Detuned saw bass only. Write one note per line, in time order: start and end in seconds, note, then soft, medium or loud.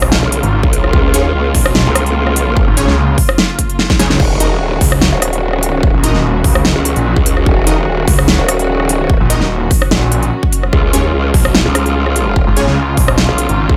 0.00 0.21 B1 loud
0.43 0.62 G#1 medium
1.55 1.84 B1 loud
2.67 2.86 G#1 loud
2.88 3.16 C#2 loud
3.99 4.18 C#2 medium
4.81 5.11 C#2 loud
5.94 6.13 A#1 loud
6.14 6.43 D#1 loud
6.44 6.74 C#2 loud
6.96 7.15 A#1 loud
8.08 8.37 C#2 loud
9.20 9.39 A#1 medium
9.41 9.69 D#1 medium
9.91 10.31 A#1 loud
11.34 11.64 B1 loud
12.47 12.66 G#1 loud
12.67 12.96 C#2 medium
12.97 13.27 B1 loud
13.49 13.68 G#1 loud